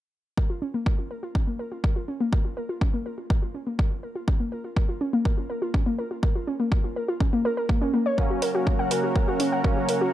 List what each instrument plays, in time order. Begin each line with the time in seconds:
0.38 synth arpeggio sound A#4, kick
0.50 synth arpeggio sound F4
0.62 synth arpeggio sound C#4
0.74 synth arpeggio sound A#3
0.86 synth arpeggio sound A#4, kick
0.99 synth arpeggio sound F4
1.11 synth arpeggio sound A#4
1.23 synth arpeggio sound F4
1.35 synth arpeggio sound C#4, kick
1.47 synth arpeggio sound A#3
1.59 synth arpeggio sound A#4
1.72 synth arpeggio sound F4
1.84 synth arpeggio sound A#4, kick
1.96 synth arpeggio sound F4
2.08 synth arpeggio sound C#4
2.21 synth arpeggio sound A#3
2.33 synth arpeggio sound A#4, kick
2.45 synth arpeggio sound F4
2.57 synth arpeggio sound A#4
2.69 synth arpeggio sound F4
2.81 synth arpeggio sound C#4, kick
2.94 synth arpeggio sound A#3
3.06 synth arpeggio sound A#4
3.18 synth arpeggio sound F4
3.30 synth arpeggio sound A#4, kick
3.42 synth arpeggio sound F4
3.54 synth arpeggio sound C#4
3.67 synth arpeggio sound A#3
3.79 synth arpeggio sound A#4, kick
3.91 synth arpeggio sound F4
4.03 synth arpeggio sound A#4
4.16 synth arpeggio sound F4
4.28 synth arpeggio sound C#4, kick
4.40 synth arpeggio sound A#3
4.52 synth arpeggio sound A#4
4.64 synth arpeggio sound F4
4.76 synth arpeggio sound A#4, kick
4.89 synth arpeggio sound F4
5.01 synth arpeggio sound C#4
5.13 synth arpeggio sound A#3
5.25 synth arpeggio sound A#4, kick
5.38 synth arpeggio sound F4
5.50 synth arpeggio sound A#4
5.62 synth arpeggio sound F4
5.74 synth arpeggio sound C#4, kick
5.86 synth arpeggio sound A#3
5.99 synth arpeggio sound A#4
6.11 synth arpeggio sound F4
6.23 synth arpeggio sound A#4, kick
6.35 synth arpeggio sound F4
6.47 synth arpeggio sound C#4
6.60 synth arpeggio sound A#3
6.72 synth arpeggio sound A#4, kick
6.84 synth arpeggio sound F4
6.96 synth arpeggio sound A#4
7.08 synth arpeggio sound F4
7.20 synth arpeggio sound C#4, kick
7.33 synth arpeggio sound A#3
7.45 synth arpeggio sound A#4
7.57 synth arpeggio sound A#4
7.69 synth arpeggio sound A#3, kick
7.82 synth arpeggio sound C#4
7.94 synth arpeggio sound A#3
8.06 synth arpeggio sound C#5
8.18 analog synth pad C#3 A#3 F#4 A#4, analog polysynth F#3 A#3 C#4, synth arpeggio sound A#4, kick
8.30 synth arpeggio sound F#4
8.42 synth arpeggio sound A#4, open hi-hat
8.55 synth arpeggio sound F#4
8.67 synth arpeggio sound C#4, kick
8.79 synth arpeggio sound F#5
8.91 synth arpeggio sound A#4, open hi-hat
9.04 synth arpeggio sound F#4
9.16 synth arpeggio sound A#4, kick
9.28 synth arpeggio sound F#4
9.40 synth arpeggio sound C#4, open hi-hat
9.52 synth arpeggio sound F#5
9.64 analog polysynth F#3 A#3 C#4, synth arpeggio sound A#4, kick
9.77 synth arpeggio sound F#4
9.89 synth arpeggio sound A#4, open hi-hat
10.01 synth arpeggio sound F#4